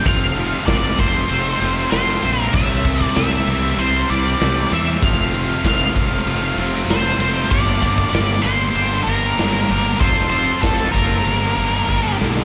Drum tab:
CC |----------------|x---------------|----------------|x---------------|
RD |x-x-x-x-x-x-x-x-|--x-x-x-x-x-x-x-|x-x-x-x-x-x-x-x-|--x-x-x-x-x-x-x-|
SD |----o-------o---|----o-------o---|----o-------o---|----o-------o---|
BD |o---o-o---------|o-oo------------|o---o-o---------|o-oo------------|

CC |----------------|
RD |x-x-x-x-x-x-----|
SD |----o---------oo|
BD |o---o-o-----o---|